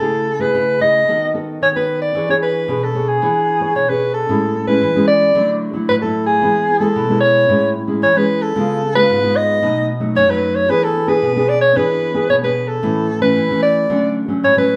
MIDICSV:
0, 0, Header, 1, 3, 480
1, 0, Start_track
1, 0, Key_signature, 3, "major"
1, 0, Tempo, 533808
1, 13, Time_signature, 4, 2, 24, 8
1, 13275, End_track
2, 0, Start_track
2, 0, Title_t, "Soprano saxophone"
2, 0, Program_c, 0, 64
2, 0, Note_on_c, 0, 69, 73
2, 363, Note_on_c, 0, 71, 79
2, 376, Note_off_c, 0, 69, 0
2, 724, Note_off_c, 0, 71, 0
2, 730, Note_on_c, 0, 75, 89
2, 1178, Note_off_c, 0, 75, 0
2, 1461, Note_on_c, 0, 73, 82
2, 1513, Note_off_c, 0, 73, 0
2, 1582, Note_on_c, 0, 71, 75
2, 1802, Note_off_c, 0, 71, 0
2, 1811, Note_on_c, 0, 74, 73
2, 2036, Note_off_c, 0, 74, 0
2, 2069, Note_on_c, 0, 73, 73
2, 2119, Note_off_c, 0, 73, 0
2, 2178, Note_on_c, 0, 71, 72
2, 2552, Note_on_c, 0, 69, 67
2, 2565, Note_off_c, 0, 71, 0
2, 2773, Note_on_c, 0, 68, 66
2, 2787, Note_off_c, 0, 69, 0
2, 3372, Note_off_c, 0, 68, 0
2, 3377, Note_on_c, 0, 73, 78
2, 3499, Note_on_c, 0, 71, 71
2, 3512, Note_off_c, 0, 73, 0
2, 3715, Note_off_c, 0, 71, 0
2, 3720, Note_on_c, 0, 69, 75
2, 4174, Note_off_c, 0, 69, 0
2, 4200, Note_on_c, 0, 71, 85
2, 4542, Note_off_c, 0, 71, 0
2, 4564, Note_on_c, 0, 74, 95
2, 5016, Note_off_c, 0, 74, 0
2, 5294, Note_on_c, 0, 71, 78
2, 5348, Note_off_c, 0, 71, 0
2, 5412, Note_on_c, 0, 69, 67
2, 5626, Note_off_c, 0, 69, 0
2, 5632, Note_on_c, 0, 68, 76
2, 6108, Note_on_c, 0, 69, 88
2, 6122, Note_off_c, 0, 68, 0
2, 6472, Note_off_c, 0, 69, 0
2, 6478, Note_on_c, 0, 73, 88
2, 6932, Note_off_c, 0, 73, 0
2, 7221, Note_on_c, 0, 73, 89
2, 7349, Note_on_c, 0, 71, 78
2, 7363, Note_off_c, 0, 73, 0
2, 7571, Note_on_c, 0, 69, 77
2, 7584, Note_off_c, 0, 71, 0
2, 8043, Note_off_c, 0, 69, 0
2, 8048, Note_on_c, 0, 71, 94
2, 8416, Note_on_c, 0, 75, 98
2, 8430, Note_off_c, 0, 71, 0
2, 8896, Note_off_c, 0, 75, 0
2, 9138, Note_on_c, 0, 73, 97
2, 9264, Note_on_c, 0, 71, 80
2, 9277, Note_off_c, 0, 73, 0
2, 9489, Note_on_c, 0, 73, 82
2, 9502, Note_off_c, 0, 71, 0
2, 9620, Note_on_c, 0, 71, 92
2, 9634, Note_off_c, 0, 73, 0
2, 9743, Note_on_c, 0, 69, 77
2, 9756, Note_off_c, 0, 71, 0
2, 9967, Note_on_c, 0, 71, 93
2, 9980, Note_off_c, 0, 69, 0
2, 10328, Note_on_c, 0, 74, 91
2, 10342, Note_off_c, 0, 71, 0
2, 10435, Note_off_c, 0, 74, 0
2, 10441, Note_on_c, 0, 73, 84
2, 10580, Note_on_c, 0, 71, 77
2, 10593, Note_off_c, 0, 73, 0
2, 11053, Note_off_c, 0, 71, 0
2, 11058, Note_on_c, 0, 73, 86
2, 11112, Note_off_c, 0, 73, 0
2, 11184, Note_on_c, 0, 71, 72
2, 11401, Note_on_c, 0, 69, 77
2, 11414, Note_off_c, 0, 71, 0
2, 11879, Note_off_c, 0, 69, 0
2, 11884, Note_on_c, 0, 71, 85
2, 12224, Note_off_c, 0, 71, 0
2, 12251, Note_on_c, 0, 74, 86
2, 12700, Note_off_c, 0, 74, 0
2, 12986, Note_on_c, 0, 73, 94
2, 13093, Note_off_c, 0, 73, 0
2, 13110, Note_on_c, 0, 71, 79
2, 13275, Note_off_c, 0, 71, 0
2, 13275, End_track
3, 0, Start_track
3, 0, Title_t, "Nylon-string guitar"
3, 0, Program_c, 1, 24
3, 6, Note_on_c, 1, 49, 54
3, 9, Note_on_c, 1, 57, 42
3, 12, Note_on_c, 1, 64, 49
3, 15, Note_on_c, 1, 68, 47
3, 236, Note_off_c, 1, 57, 0
3, 237, Note_off_c, 1, 64, 0
3, 239, Note_off_c, 1, 68, 0
3, 353, Note_on_c, 1, 57, 52
3, 361, Note_on_c, 1, 64, 56
3, 363, Note_on_c, 1, 68, 56
3, 466, Note_off_c, 1, 49, 0
3, 491, Note_on_c, 1, 49, 54
3, 686, Note_off_c, 1, 57, 0
3, 687, Note_off_c, 1, 64, 0
3, 690, Note_off_c, 1, 68, 0
3, 722, Note_on_c, 1, 57, 46
3, 729, Note_on_c, 1, 64, 42
3, 731, Note_on_c, 1, 68, 47
3, 883, Note_off_c, 1, 57, 0
3, 884, Note_off_c, 1, 64, 0
3, 887, Note_off_c, 1, 68, 0
3, 948, Note_off_c, 1, 49, 0
3, 972, Note_on_c, 1, 51, 57
3, 976, Note_on_c, 1, 59, 51
3, 977, Note_on_c, 1, 66, 47
3, 981, Note_on_c, 1, 69, 49
3, 1114, Note_off_c, 1, 59, 0
3, 1116, Note_off_c, 1, 66, 0
3, 1118, Note_off_c, 1, 69, 0
3, 1203, Note_on_c, 1, 59, 42
3, 1207, Note_on_c, 1, 66, 48
3, 1212, Note_on_c, 1, 69, 50
3, 1430, Note_off_c, 1, 51, 0
3, 1456, Note_on_c, 1, 51, 48
3, 1530, Note_off_c, 1, 59, 0
3, 1533, Note_off_c, 1, 66, 0
3, 1533, Note_off_c, 1, 69, 0
3, 1582, Note_on_c, 1, 59, 45
3, 1583, Note_on_c, 1, 66, 49
3, 1586, Note_on_c, 1, 69, 55
3, 1900, Note_off_c, 1, 59, 0
3, 1900, Note_off_c, 1, 66, 0
3, 1902, Note_off_c, 1, 69, 0
3, 1911, Note_off_c, 1, 51, 0
3, 1932, Note_on_c, 1, 52, 58
3, 1936, Note_on_c, 1, 62, 46
3, 1936, Note_on_c, 1, 68, 45
3, 1942, Note_on_c, 1, 73, 53
3, 2016, Note_off_c, 1, 62, 0
3, 2017, Note_off_c, 1, 68, 0
3, 2019, Note_off_c, 1, 73, 0
3, 2058, Note_on_c, 1, 62, 50
3, 2062, Note_on_c, 1, 68, 55
3, 2068, Note_on_c, 1, 73, 55
3, 2378, Note_off_c, 1, 62, 0
3, 2380, Note_off_c, 1, 68, 0
3, 2382, Note_off_c, 1, 73, 0
3, 2390, Note_off_c, 1, 52, 0
3, 2409, Note_on_c, 1, 47, 58
3, 2414, Note_on_c, 1, 62, 45
3, 2420, Note_on_c, 1, 68, 46
3, 2420, Note_on_c, 1, 73, 50
3, 2555, Note_off_c, 1, 62, 0
3, 2556, Note_off_c, 1, 68, 0
3, 2558, Note_off_c, 1, 73, 0
3, 2646, Note_on_c, 1, 62, 42
3, 2650, Note_on_c, 1, 68, 42
3, 2654, Note_on_c, 1, 73, 49
3, 2852, Note_off_c, 1, 62, 0
3, 2854, Note_off_c, 1, 68, 0
3, 2856, Note_off_c, 1, 73, 0
3, 2869, Note_off_c, 1, 47, 0
3, 2894, Note_on_c, 1, 52, 59
3, 2898, Note_on_c, 1, 62, 51
3, 2898, Note_on_c, 1, 68, 48
3, 2903, Note_on_c, 1, 73, 55
3, 3121, Note_off_c, 1, 62, 0
3, 3122, Note_off_c, 1, 68, 0
3, 3124, Note_off_c, 1, 73, 0
3, 3238, Note_on_c, 1, 62, 50
3, 3243, Note_on_c, 1, 68, 50
3, 3247, Note_on_c, 1, 73, 57
3, 3351, Note_off_c, 1, 52, 0
3, 3373, Note_on_c, 1, 47, 52
3, 3449, Note_off_c, 1, 62, 0
3, 3450, Note_off_c, 1, 68, 0
3, 3453, Note_off_c, 1, 73, 0
3, 3499, Note_on_c, 1, 62, 47
3, 3506, Note_on_c, 1, 68, 55
3, 3512, Note_on_c, 1, 73, 51
3, 3830, Note_off_c, 1, 47, 0
3, 3838, Note_off_c, 1, 62, 0
3, 3842, Note_off_c, 1, 68, 0
3, 3843, Note_off_c, 1, 73, 0
3, 3859, Note_on_c, 1, 45, 58
3, 3859, Note_on_c, 1, 56, 51
3, 3862, Note_on_c, 1, 61, 53
3, 3866, Note_on_c, 1, 64, 50
3, 4082, Note_off_c, 1, 56, 0
3, 4084, Note_off_c, 1, 61, 0
3, 4086, Note_off_c, 1, 64, 0
3, 4203, Note_on_c, 1, 56, 51
3, 4206, Note_on_c, 1, 61, 61
3, 4209, Note_on_c, 1, 64, 65
3, 4314, Note_off_c, 1, 45, 0
3, 4328, Note_on_c, 1, 52, 57
3, 4411, Note_off_c, 1, 56, 0
3, 4412, Note_off_c, 1, 61, 0
3, 4414, Note_off_c, 1, 64, 0
3, 4457, Note_on_c, 1, 56, 60
3, 4459, Note_on_c, 1, 61, 59
3, 4467, Note_on_c, 1, 64, 64
3, 4778, Note_off_c, 1, 56, 0
3, 4780, Note_off_c, 1, 61, 0
3, 4782, Note_off_c, 1, 64, 0
3, 4788, Note_off_c, 1, 52, 0
3, 4811, Note_on_c, 1, 50, 64
3, 4815, Note_on_c, 1, 54, 56
3, 4817, Note_on_c, 1, 57, 55
3, 4819, Note_on_c, 1, 64, 50
3, 5136, Note_off_c, 1, 54, 0
3, 5137, Note_off_c, 1, 57, 0
3, 5139, Note_off_c, 1, 64, 0
3, 5155, Note_on_c, 1, 54, 59
3, 5159, Note_on_c, 1, 57, 58
3, 5162, Note_on_c, 1, 64, 55
3, 5270, Note_off_c, 1, 50, 0
3, 5291, Note_on_c, 1, 45, 56
3, 5368, Note_off_c, 1, 54, 0
3, 5368, Note_off_c, 1, 57, 0
3, 5370, Note_off_c, 1, 64, 0
3, 5419, Note_on_c, 1, 54, 55
3, 5421, Note_on_c, 1, 57, 54
3, 5427, Note_on_c, 1, 64, 59
3, 5739, Note_off_c, 1, 54, 0
3, 5739, Note_off_c, 1, 57, 0
3, 5743, Note_off_c, 1, 64, 0
3, 5749, Note_off_c, 1, 45, 0
3, 5769, Note_on_c, 1, 52, 60
3, 5774, Note_on_c, 1, 59, 48
3, 5775, Note_on_c, 1, 56, 49
3, 5783, Note_on_c, 1, 64, 59
3, 5998, Note_off_c, 1, 56, 0
3, 6001, Note_off_c, 1, 59, 0
3, 6003, Note_off_c, 1, 64, 0
3, 6114, Note_on_c, 1, 56, 61
3, 6119, Note_on_c, 1, 59, 58
3, 6123, Note_on_c, 1, 64, 64
3, 6229, Note_off_c, 1, 52, 0
3, 6255, Note_on_c, 1, 47, 64
3, 6326, Note_off_c, 1, 56, 0
3, 6329, Note_off_c, 1, 59, 0
3, 6331, Note_off_c, 1, 64, 0
3, 6377, Note_on_c, 1, 56, 55
3, 6381, Note_on_c, 1, 59, 53
3, 6386, Note_on_c, 1, 64, 61
3, 6698, Note_off_c, 1, 56, 0
3, 6700, Note_off_c, 1, 59, 0
3, 6701, Note_off_c, 1, 64, 0
3, 6711, Note_off_c, 1, 47, 0
3, 6735, Note_on_c, 1, 45, 67
3, 6737, Note_on_c, 1, 56, 52
3, 6745, Note_on_c, 1, 61, 48
3, 6746, Note_on_c, 1, 64, 60
3, 6961, Note_off_c, 1, 56, 0
3, 6962, Note_off_c, 1, 61, 0
3, 6966, Note_off_c, 1, 64, 0
3, 7079, Note_on_c, 1, 56, 51
3, 7084, Note_on_c, 1, 61, 53
3, 7084, Note_on_c, 1, 64, 61
3, 7192, Note_off_c, 1, 45, 0
3, 7213, Note_on_c, 1, 52, 57
3, 7289, Note_off_c, 1, 56, 0
3, 7291, Note_off_c, 1, 61, 0
3, 7292, Note_off_c, 1, 64, 0
3, 7341, Note_on_c, 1, 56, 51
3, 7345, Note_on_c, 1, 61, 57
3, 7350, Note_on_c, 1, 64, 65
3, 7660, Note_off_c, 1, 56, 0
3, 7662, Note_off_c, 1, 61, 0
3, 7664, Note_off_c, 1, 64, 0
3, 7671, Note_off_c, 1, 52, 0
3, 7695, Note_on_c, 1, 49, 65
3, 7698, Note_on_c, 1, 56, 53
3, 7699, Note_on_c, 1, 59, 48
3, 7706, Note_on_c, 1, 65, 57
3, 7921, Note_off_c, 1, 56, 0
3, 7923, Note_off_c, 1, 59, 0
3, 7925, Note_off_c, 1, 65, 0
3, 8041, Note_on_c, 1, 56, 55
3, 8045, Note_on_c, 1, 59, 57
3, 8048, Note_on_c, 1, 65, 69
3, 8152, Note_off_c, 1, 49, 0
3, 8176, Note_on_c, 1, 44, 63
3, 8250, Note_off_c, 1, 56, 0
3, 8252, Note_off_c, 1, 59, 0
3, 8254, Note_off_c, 1, 65, 0
3, 8301, Note_on_c, 1, 56, 64
3, 8306, Note_on_c, 1, 59, 59
3, 8309, Note_on_c, 1, 65, 63
3, 8620, Note_off_c, 1, 56, 0
3, 8623, Note_off_c, 1, 59, 0
3, 8623, Note_off_c, 1, 65, 0
3, 8632, Note_off_c, 1, 44, 0
3, 8654, Note_on_c, 1, 47, 64
3, 8656, Note_on_c, 1, 54, 47
3, 8659, Note_on_c, 1, 57, 54
3, 8660, Note_on_c, 1, 63, 60
3, 8881, Note_off_c, 1, 54, 0
3, 8881, Note_off_c, 1, 57, 0
3, 8883, Note_off_c, 1, 63, 0
3, 8992, Note_on_c, 1, 54, 57
3, 8997, Note_on_c, 1, 57, 60
3, 9002, Note_on_c, 1, 63, 65
3, 9112, Note_off_c, 1, 47, 0
3, 9129, Note_on_c, 1, 42, 57
3, 9206, Note_off_c, 1, 54, 0
3, 9208, Note_off_c, 1, 57, 0
3, 9211, Note_off_c, 1, 63, 0
3, 9250, Note_on_c, 1, 54, 60
3, 9253, Note_on_c, 1, 57, 55
3, 9257, Note_on_c, 1, 63, 59
3, 9574, Note_off_c, 1, 54, 0
3, 9576, Note_off_c, 1, 57, 0
3, 9578, Note_off_c, 1, 63, 0
3, 9589, Note_off_c, 1, 42, 0
3, 9608, Note_on_c, 1, 52, 62
3, 9612, Note_on_c, 1, 59, 52
3, 9613, Note_on_c, 1, 62, 50
3, 9617, Note_on_c, 1, 68, 56
3, 9838, Note_off_c, 1, 59, 0
3, 9840, Note_off_c, 1, 62, 0
3, 9841, Note_off_c, 1, 68, 0
3, 9956, Note_on_c, 1, 59, 53
3, 9960, Note_on_c, 1, 62, 55
3, 9963, Note_on_c, 1, 68, 63
3, 10069, Note_off_c, 1, 52, 0
3, 10091, Note_on_c, 1, 47, 59
3, 10167, Note_off_c, 1, 59, 0
3, 10169, Note_off_c, 1, 62, 0
3, 10171, Note_off_c, 1, 68, 0
3, 10217, Note_on_c, 1, 59, 62
3, 10222, Note_on_c, 1, 62, 63
3, 10226, Note_on_c, 1, 68, 59
3, 10538, Note_off_c, 1, 59, 0
3, 10540, Note_off_c, 1, 62, 0
3, 10543, Note_off_c, 1, 68, 0
3, 10550, Note_off_c, 1, 47, 0
3, 10572, Note_on_c, 1, 52, 64
3, 10574, Note_on_c, 1, 59, 48
3, 10579, Note_on_c, 1, 62, 51
3, 10580, Note_on_c, 1, 68, 58
3, 10896, Note_off_c, 1, 59, 0
3, 10898, Note_off_c, 1, 62, 0
3, 10899, Note_off_c, 1, 68, 0
3, 10918, Note_on_c, 1, 59, 52
3, 10922, Note_on_c, 1, 62, 47
3, 10926, Note_on_c, 1, 68, 56
3, 11030, Note_off_c, 1, 52, 0
3, 11055, Note_on_c, 1, 47, 58
3, 11129, Note_off_c, 1, 59, 0
3, 11129, Note_off_c, 1, 62, 0
3, 11132, Note_off_c, 1, 68, 0
3, 11175, Note_on_c, 1, 59, 52
3, 11179, Note_on_c, 1, 62, 50
3, 11184, Note_on_c, 1, 68, 58
3, 11497, Note_off_c, 1, 59, 0
3, 11499, Note_off_c, 1, 62, 0
3, 11502, Note_off_c, 1, 68, 0
3, 11511, Note_off_c, 1, 47, 0
3, 11536, Note_on_c, 1, 45, 64
3, 11540, Note_on_c, 1, 52, 55
3, 11540, Note_on_c, 1, 57, 52
3, 11544, Note_on_c, 1, 61, 49
3, 11762, Note_off_c, 1, 52, 0
3, 11763, Note_off_c, 1, 57, 0
3, 11765, Note_off_c, 1, 61, 0
3, 11877, Note_on_c, 1, 52, 56
3, 11883, Note_on_c, 1, 57, 56
3, 11887, Note_on_c, 1, 61, 70
3, 11992, Note_off_c, 1, 45, 0
3, 12002, Note_off_c, 1, 52, 0
3, 12013, Note_on_c, 1, 52, 63
3, 12090, Note_off_c, 1, 57, 0
3, 12093, Note_off_c, 1, 61, 0
3, 12131, Note_off_c, 1, 52, 0
3, 12141, Note_on_c, 1, 52, 53
3, 12147, Note_on_c, 1, 57, 63
3, 12147, Note_on_c, 1, 61, 64
3, 12460, Note_off_c, 1, 52, 0
3, 12462, Note_off_c, 1, 57, 0
3, 12463, Note_off_c, 1, 61, 0
3, 12497, Note_on_c, 1, 50, 65
3, 12499, Note_on_c, 1, 54, 51
3, 12502, Note_on_c, 1, 57, 53
3, 12503, Note_on_c, 1, 61, 59
3, 12819, Note_off_c, 1, 54, 0
3, 12819, Note_off_c, 1, 57, 0
3, 12821, Note_off_c, 1, 61, 0
3, 12842, Note_on_c, 1, 54, 52
3, 12847, Note_on_c, 1, 57, 57
3, 12851, Note_on_c, 1, 61, 59
3, 12953, Note_off_c, 1, 50, 0
3, 12980, Note_on_c, 1, 45, 56
3, 13051, Note_off_c, 1, 54, 0
3, 13053, Note_off_c, 1, 57, 0
3, 13054, Note_off_c, 1, 61, 0
3, 13099, Note_on_c, 1, 54, 53
3, 13105, Note_on_c, 1, 57, 54
3, 13106, Note_on_c, 1, 61, 60
3, 13275, Note_off_c, 1, 45, 0
3, 13275, Note_off_c, 1, 54, 0
3, 13275, Note_off_c, 1, 57, 0
3, 13275, Note_off_c, 1, 61, 0
3, 13275, End_track
0, 0, End_of_file